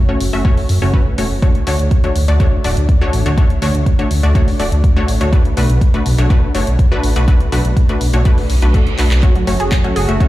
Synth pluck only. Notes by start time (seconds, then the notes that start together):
0.09 A3 C#4 F#4 C#5
0.33 A3 C#4 F#4 E5
0.45 A3 C#4 F#4 C#5
0.82 A3 C#4 F#4 C#5
0.94 A3 C#4 F#4 B4
1.18 A3 C#4 F#4 C#5
1.43 A3 D4 F#4 C#5
1.67 A3 D4 F#4 C#5
2.04 A3 D4 F#4 C#5
2.28 A3 D4 F#4 D5
2.40 A3 D4 F#4 C#5
2.64 A3 D4 F#4 D5
3.01 A3 D4 F#4 C#5
3.26 A3 D4 F#4 C#5
3.38 A3 D4 F#4 C#5
3.62 A3 D4 F#4 C#5
3.99 A3 D4 F#4 C#5
4.23 A3 D4 F#4 D5
4.35 A3 D4 F#4 C#5
4.60 A3 D4 F#4 D5
4.96 A3 D4 F#4 C#5
5.21 A3 D4 F#4 C#5
5.33 A3 D4 F#4 B4
5.57 A3 D4 F#4 B4
5.94 A3 D4 F#4 B4
6.18 A3 D4 F#4 C#5
6.30 A3 D4 F#4 B4
6.55 A3 D4 F#4 C#5
6.92 A3 D4 F#4 B4
7.16 A3 D4 F#4 B4
7.28 A3 D4 F#4 B4
7.52 A3 D4 F#4 B4
7.89 A3 D4 F#4 B4
8.14 A3 D4 F#4 C#5
8.25 A3 D4 F#4 B4
8.62 A3 D4 F#4 B4
8.74 A3 D4 F#4 A4
8.99 A3 D4 F#4 B4
9.23 A3 C#4 F#4 C#5
9.47 A3 C#4 F#4 C#5
9.84 A3 C#4 F#4 C#5
10.09 A3 C#4 F#4 E5
10.20 A3 C#4 F#4 C#5